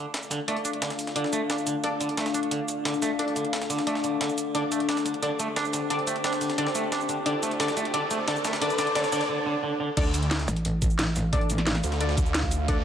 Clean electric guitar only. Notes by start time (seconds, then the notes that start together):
0.31 D3
0.48 A3
0.65 D4
0.82 D3
1.16 D3
1.33 A3
1.50 D4
1.67 D3
2.00 D3
2.17 A3
2.34 D4
2.51 D3
2.85 D3
3.02 A3
3.19 D4
3.36 D3
3.70 D3
3.87 A3
4.04 D3
4.21 D3
4.55 D3
4.72 A3
4.89 D4
5.06 D3
5.22 D3
5.39 A3
5.56 D4
5.73 D3
5.90 D3
6.07 A3
6.24 D4
6.41 D3
6.58 D3
6.75 A3
6.92 D4
7.09 D3
7.26 D3
7.43 A3
7.60 D3
7.77 A3
7.94 D3
8.11 A3
8.28 D3
8.45 A3
8.61 D3
8.78 D3
8.95 D3
9.12 D3
9.29 D3
9.46 D3
9.63 D3
9.80 D3